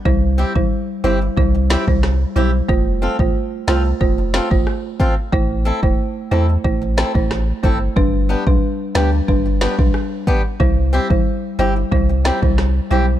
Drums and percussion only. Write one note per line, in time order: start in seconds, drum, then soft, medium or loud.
0.05 kick loud
0.56 kick medium
1.37 kick medium
1.70 snare loud
1.88 kick medium
2.03 cross-stick medium
2.03 snare medium
2.69 kick loud
3.19 kick medium
3.68 snare loud
4.01 kick medium
4.34 snare loud
4.51 kick medium
4.67 cross-stick medium
5.00 kick medium
5.33 kick loud
5.83 kick medium
6.65 kick medium
6.98 snare loud
7.15 kick medium
7.31 cross-stick medium
7.31 snare medium
7.64 kick medium
7.96 kick loud
8.47 kick medium
8.95 snare loud
9.28 kick medium
9.61 snare loud
9.79 kick medium
9.94 cross-stick medium
10.27 kick medium
10.60 kick loud
11.10 kick medium
11.92 kick medium
12.25 snare loud
12.43 kick medium
12.58 cross-stick medium
12.58 snare medium